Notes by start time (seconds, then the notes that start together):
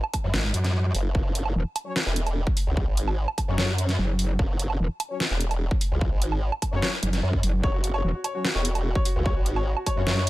0.04 low woodblock
0.14 kick, closed hi-hat, low woodblock
0.24 F#2
0.34 G#1, snare
0.54 F#2, closed hi-hat
0.64 snare, closed hi-hat
0.95 F#1, open hi-hat
1.15 F#1, kick
1.35 closed hi-hat
1.46 low woodblock
1.55 E1
1.76 closed hi-hat, low woodblock
1.86 F#3 C#4 C#5
1.96 snare
2.06 E1
2.16 closed hi-hat
2.27 closed hi-hat, low woodblock
2.47 kick
2.57 open hi-hat
2.67 C#2
2.77 kick
2.87 G#1
2.97 closed hi-hat
3.08 low woodblock
3.28 low woodblock
3.38 kick, closed hi-hat, low woodblock
3.48 F#2 F#3 C#4 C#5
3.58 F#2, snare
3.78 closed hi-hat
3.89 snare, closed hi-hat
3.99 F#1
4.19 open hi-hat
4.39 F#1, kick
4.59 closed hi-hat
4.70 low woodblock
4.80 E1
5.00 closed hi-hat, low woodblock
5.10 F#3 C#4 C#5
5.20 snare
5.31 E1
5.41 closed hi-hat
5.51 closed hi-hat, low woodblock
5.71 kick
5.81 open hi-hat
5.91 C#2
6.01 kick
6.12 G#1
6.22 closed hi-hat
6.32 low woodblock
6.52 low woodblock
6.62 kick, closed hi-hat, low woodblock
6.72 F#2 F#3 C#4 C#5
6.82 snare
7.03 F#1, closed hi-hat
7.13 snare, closed hi-hat
7.23 F#2
7.33 kick
7.43 F#1, open hi-hat
7.63 F#1 C#5, kick
7.74 F#4
7.84 F#4, closed hi-hat
7.94 C#5, low woodblock
8.04 E1 F#4
8.14 F#4
8.24 C#5, closed hi-hat, low woodblock
8.35 F#3 C#4 F#4 C#5
8.45 F#4, snare
8.55 E1 C#5
8.65 F#4, closed hi-hat
8.75 F#4, closed hi-hat, low woodblock
8.85 F#4
8.95 C#5, kick
9.05 F#4, open hi-hat
9.16 C#2 F#4
9.26 C#5, kick
9.36 G#1 F#4
9.46 F#4, closed hi-hat
9.56 C#5, low woodblock
9.66 F#4
9.77 F#4, low woodblock
9.86 C#5, kick, closed hi-hat, low woodblock
9.97 F#2 F#3 C#4 F#4 C#5
10.07 F#2 F#4, snare
10.17 C#5